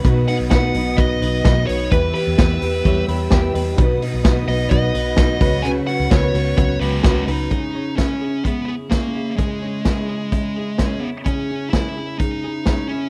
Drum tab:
RD |x-x-x-x-|x-x-x-x-|x-x-x-x-|x-x-x-x-|
HH |popopopo|popopopo|popopopo|popopopo|
SD |--o---o-|--o---o-|--o---o-|--o---o-|
BD |o-o-o-o-|o-o-o-o-|o-o-o-oo|--o-o-o-|

RD |--------|--------|--------|
HH |x-x-x-x-|x-x-x-x-|x-x-x-x-|
SD |--o---o-|--o---o-|--o---o-|
BD |o-o-o-o-|o-o-o-o-|o-o-o-o-|